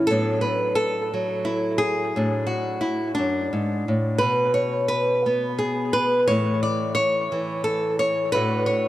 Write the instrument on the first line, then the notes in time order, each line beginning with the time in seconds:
nylon-string guitar
0.07 A2 F#3 A4
0.11 B3 D4
0.41 B4
0.75 A4
1.14 F#3
1.45 E4
1.78 G#4
2.16 A2 D4
2.47 F#4
2.81 E4
3.15 F#2 D4
3.53 G#2
3.88 A2
4.18 B2 B4
4.54 C#5
4.88 B4
5.26 B3
5.59 G#4
5.93 B4
6.28 A2 E3 A3 E4 C#5
6.63 D5
6.95 C#5
7.32 E3
7.64 A4
7.99 C#5
8.32 A2 A3 D4 B4
8.36 F#4
8.66 C#5